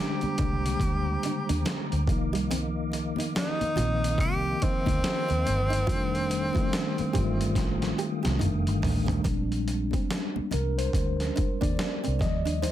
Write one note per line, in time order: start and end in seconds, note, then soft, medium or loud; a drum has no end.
0.00 0.45 D3 medium
0.00 0.39 G3 medium
0.00 0.40 G#3 medium
0.00 2.09 D4 medium
0.00 2.08 G4 medium
0.00 2.04 C5 medium
0.00 2.04 G5 medium
0.00 2.04 A#5 medium
0.00 5.83 D6 medium
0.21 muted fingered electric bass stroke soft
0.21 closed hi-hat soft
0.21 high conga medium
0.37 0.74 C2 medium
0.37 0.46 C#3 medium
0.37 2.01 G3 medium
0.37 2.01 G#3 medium
0.37 0.59 D4 medium
0.37 kick medium
0.37 closed hi-hat medium
0.37 low conga medium
0.42 2.03 D3 medium
0.42 2.02 A#3 medium
0.66 closed hi-hat medium
0.80 1.16 D2 medium
0.80 muted nylon-string guitar stroke soft
0.80 kick loud
0.80 closed hi-hat medium
0.80 muted conga soft
1.23 1.44 D4 medium
1.23 closed hi-hat medium
1.23 muted conga soft
1.49 1.63 D#2 medium
1.49 1.62 D4 medium
1.49 closed hi-hat medium
1.49 high conga medium
1.65 1.85 A#3 medium
1.65 snare medium
1.65 closed hi-hat medium
1.65 muted conga soft
1.92 2.09 D2 medium
1.92 closed hi-hat soft
2.07 3.12 C2 loud
2.07 3.69 D#3 medium
2.07 3.70 F3 medium
2.07 3.70 A#3 medium
2.07 5.84 A#4 medium
2.07 5.84 D#5 medium
2.07 9.21 F5 medium
2.07 muted nylon-string guitar stroke soft
2.07 kick medium
2.07 closed hi-hat medium
2.12 3.71 D#4 loud
2.33 2.46 G3 medium
2.33 closed hi-hat soft
2.50 2.70 C4 medium
2.50 closed hi-hat medium
2.50 low conga medium
2.92 muted nylon-string guitar stroke soft
2.92 closed hi-hat medium
2.92 muted conga soft
3.16 3.31 D#4 medium
3.16 closed hi-hat soft
3.16 high conga medium
3.35 4.16 D#4 loud
3.35 snare loud
3.35 closed hi-hat medium
3.35 muted conga soft
3.61 muted fingered electric bass stroke soft
3.61 closed hi-hat soft
3.61 high conga medium
3.76 4.19 A#1 medium
3.76 5.38 D#3 medium
3.76 5.39 F3 medium
3.76 5.39 A#3 medium
3.76 3.96 F4 medium
3.76 closed hi-hat medium
3.76 muted conga soft
3.76 low conga medium
3.80 5.40 C4 medium
4.04 closed hi-hat medium
4.18 4.53 C2 medium
4.18 4.65 G4 loud
4.18 muted nylon-string guitar stroke soft
4.18 kick loud
4.18 closed hi-hat medium
4.18 muted conga soft
4.60 8.42 C4 loud
4.60 4.82 D#4 medium
4.60 kick medium
4.60 closed hi-hat medium
4.60 muted conga soft
4.86 5.01 D2 medium
4.86 5.00 D#4 medium
4.86 kick medium
4.86 closed hi-hat soft
4.86 high conga medium
5.04 snare loud
5.04 closed hi-hat medium
5.28 5.43 D#2 medium
5.28 5.42 C4 medium
5.28 closed hi-hat soft
5.46 5.88 G1 medium
5.46 muted nylon-string guitar stroke soft
5.46 closed hi-hat medium
5.46 muted conga soft
5.70 5.84 D#4 medium
5.70 closed hi-hat soft
5.87 6.57 F1 medium
5.87 6.51 D#3 loud
5.87 6.52 G3 loud
5.87 6.53 A3 medium
5.87 6.07 F4 medium
5.87 9.22 A4 medium
5.87 9.22 G5 medium
5.87 kick loud
5.87 closed hi-hat medium
5.87 low conga medium
5.92 6.53 D4 loud
6.15 closed hi-hat soft
6.30 muted nylon-string guitar stroke soft
6.30 closed hi-hat medium
6.53 7.11 D#3 medium
6.53 7.12 G3 medium
6.53 6.68 F4 medium
6.53 kick medium
6.53 closed hi-hat soft
6.53 high conga medium
6.58 7.13 A3 medium
6.58 6.62 B3 medium
6.66 7.17 C4 medium
6.73 snare loud
6.73 closed hi-hat medium
6.98 muted fingered electric bass stroke soft
6.98 closed hi-hat soft
6.98 high conga medium
7.13 7.57 G1 medium
7.13 8.38 D#3 medium
7.13 8.40 G3 medium
7.13 7.23 G#3 medium
7.13 7.34 G4 medium
7.13 kick medium
7.13 closed hi-hat medium
7.13 low conga medium
7.18 8.43 F4 loud
7.24 8.41 A3 medium
7.41 closed hi-hat medium
7.55 7.91 A1 medium
7.55 muted nylon-string guitar stroke soft
7.55 kick medium
7.55 snare medium
7.55 closed hi-hat medium
7.55 muted conga soft
7.82 snare medium
7.82 closed hi-hat soft
7.98 8.18 G4 medium
7.98 closed hi-hat medium
8.23 8.39 C2 medium
8.23 8.37 G4 medium
8.23 snare medium
8.23 closed hi-hat soft
8.23 high conga medium
8.39 9.21 D#3 medium
8.39 9.22 G3 medium
8.39 9.23 A3 medium
8.39 8.60 D#4 medium
8.39 closed hi-hat medium
8.39 mid tom medium
8.43 8.68 F1 medium
8.43 9.24 D4 medium
8.67 8.81 G1 medium
8.67 closed hi-hat soft
8.82 9.19 A1 medium
8.82 muted nylon-string guitar stroke soft
8.82 floor tom medium
8.82 open hi-hat soft
8.82 muted conga soft
9.06 9.21 C4 medium
9.06 closed hi-hat soft
9.06 floor tom medium
9.24 9.95 A#1 medium
9.24 9.85 G3 soft
9.24 9.85 G#3 soft
9.24 9.45 A#3 medium
9.24 9.86 C4 soft
9.24 9.86 D4 medium
9.24 kick loud
9.24 closed hi-hat medium
9.24 low conga medium
9.52 closed hi-hat soft
9.68 muted nylon-string guitar stroke soft
9.68 closed hi-hat medium
9.91 10.07 C4 medium
9.91 kick medium
9.91 closed hi-hat soft
9.91 high conga medium
10.11 snare loud
10.11 closed hi-hat medium
10.36 muted fingered electric bass stroke soft
10.36 high conga medium
10.51 10.88 C2 medium
10.51 10.72 D4 medium
10.51 10.79 A#4 medium
10.51 closed hi-hat medium
10.51 low conga medium
10.78 11.65 C5 medium
10.78 closed hi-hat medium
10.93 11.29 D2 medium
10.93 muted nylon-string guitar stroke soft
10.93 kick medium
10.93 closed hi-hat medium
11.20 snare soft
11.20 closed hi-hat soft
11.36 11.56 D4 medium
11.36 kick medium
11.36 closed hi-hat medium
11.61 11.77 D#2 medium
11.61 11.75 D4 medium
11.61 12.22 D5 medium
11.61 kick medium
11.61 closed hi-hat medium
11.61 high conga medium
11.77 snare loud
11.77 closed hi-hat medium
11.77 high conga medium
12.04 12.20 C2 medium
12.04 12.17 C4 medium
12.04 closed hi-hat soft
12.19 12.72 D#2 medium
12.19 12.72 F3 medium
12.19 12.60 D#5 loud
12.19 muted nylon-string guitar stroke soft
12.19 kick loud
12.19 snare soft
12.19 closed hi-hat medium
12.19 low conga medium
12.23 12.72 G3 soft
12.23 12.72 D5 medium
12.45 12.59 D4 medium
12.45 closed hi-hat soft
12.62 12.72 D#4 medium
12.62 12.72 C5 loud
12.62 closed hi-hat medium
12.62 muted conga soft
12.62 low conga medium